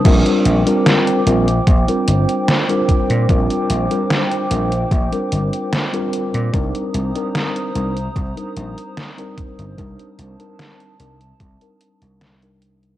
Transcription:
<<
  \new Staff \with { instrumentName = "Ambient pad" } { \time 4/4 \key bes \major \tempo 4 = 74 << { <c'' d'''>1~ | <c'' d'''>1 | <c'' ees'''>1~ | <c'' ees'''>1 | } \\ { g''1~ | g''1 | bes''1 | a''1 | } >> }
  \new Staff \with { instrumentName = "Tine electric piano" } { \time 4/4 \key bes \major <g c' d' f' bes'>8. <g c' d' f' bes'>8. <g c' d' f' bes'>16 r8 <g c' d' f' bes'>4 <g c' d' f' bes'>8. | <g c' d' f' bes'>8. <g c' d' f' bes'>8. <g c' d' f' bes'>16 r8 <g c' d' f' bes'>4 <g c' d' f' bes'>8. | <g c' d' ees' bes'>8. <g c' d' ees' bes'>8. <g c' d' ees' bes'>16 r8 <g c' d' ees' bes'>4 <g c' d' ees' bes'>8. | <g c' d' ees' bes'>8. <g c' d' ees' bes'>8. <g c' d' ees' bes'>16 r8 <g c' d' ees' bes'>4 <g c' d' ees' bes'>8. | }
  \new Staff \with { instrumentName = "Slap bass" } { \clef bass \time 4/4 \key bes \major bes,,16 r16 bes,,16 r8. bes,,8 bes,,16 r16 g,,16 r4 bes,16 | bes,,16 r16 bes,,16 r8. bes,,8 bes,,16 r16 g,,16 r4 bes,16 | c,16 r16 c,16 r8. c,8 c,16 r16 bes,,16 r4 g,,16 | c,16 r16 c,16 r8. c,8 c,16 r8 c,4~ c,16 | }
  \new DrumStaff \with { instrumentName = "Drums" } \drummode { \time 4/4 <cymc hh bd>16 hh16 hh16 hh16 <hh sn>16 hh16 hh16 hh16 <hh bd>16 hh16 hh16 hh16 <hh sn>16 hh16 <hh bd>16 hh16 | <hh bd>16 hh16 hh16 hh16 <hh sn>16 hh16 hh16 hh16 <hh bd>16 hh16 hh16 hh16 <hh sn>16 hh16 hh16 hh16 | <hh bd>16 hh16 hh16 hh16 <hh sn>16 hh16 hh16 hh16 <hh bd>16 hh16 hh16 hh16 <hh sn>16 hh16 <hh bd>16 hh16 | <hh bd>16 hh16 hh16 hh16 <hh sn>16 hh16 hh16 hh16 <hh bd>16 hh16 hh16 hh16 <hh sn>16 hh16 hh16 hh16 | }
>>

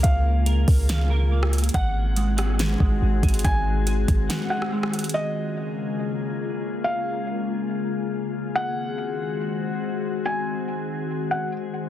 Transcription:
<<
  \new Staff \with { instrumentName = "Felt piano" } { \time 4/4 \key des \major \tempo 4 = 141 f''1 | ges''1 | aes''2~ aes''8 ges''8 r4 | ees''1 |
f''1 | ges''1 | aes''2~ aes''8 ges''8 r4 | }
  \new Staff \with { instrumentName = "Clean electric guitar" } { \time 4/4 \key des \major <bes bes' f''>4 bes'4 f''8 bes'8 bes4 | ges''4 aes8 ges''8 aes'8 aes4 aes'8~ | aes'4 aes'4 ges''8 aes'8 aes4 | r1 |
r1 | r1 | r1 | }
  \new Staff \with { instrumentName = "Ambient pad" } { \time 4/4 \key des \major << { <aes aes'>1 | <aes aes'>1~ | <aes aes'>1 | <aes aes'>1~ |
<aes aes'>1~ | <aes aes'>1~ | <aes aes'>1 | } \\ { <des bes f'>1 | <ees c' ges'>1~ | <ees c' ges'>1 | <des bes f'>1~ |
<des bes f'>1 | <ees c' ges'>1~ | <ees c' ges'>1 | } >> }
  \new Staff \with { instrumentName = "808-style bass" } { \clef bass \time 4/4 \key des \major des,4. des,2~ des,8 | aes,,2~ aes,,8 aes,,8 aes,,8 aes,,8 | aes,,4. aes,,8 r2 | r1 |
r1 | r1 | r1 | }
  \new DrumStaff \with { instrumentName = "Drums" } \drummode { \time 4/4 <hh bd>4 hh8 <hho bd>8 <hh sn>4 r16 ss16 hh32 hh32 hh32 hh32 | <hh bd>4 hh8 <hh ss>8 <hh sn>8 bd8 r8 <hh bd>32 hh32 hh32 hh32 | <hh bd>4 hh8 <hh bd>8 <hh sn>8. ss16 r16 ss16 hh32 hh32 hh32 hh32 | r4 r4 r4 r4 |
r4 r4 r4 r4 | r4 r4 r4 r4 | r4 r4 r4 r4 | }
>>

